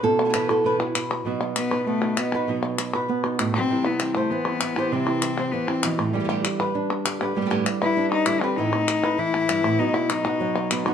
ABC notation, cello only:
X:1
M:4/4
L:1/8
Q:1/4=197
K:none
V:1 name="Cello"
z8 | z2 B,2 A,2 B,2 | z6 z C- | C B, C A, B,4 |
C4 B, C E,2- | E,3 z4 z | z3 E2 ^D E C | ^D4 E4 |
^D E D4- D z |]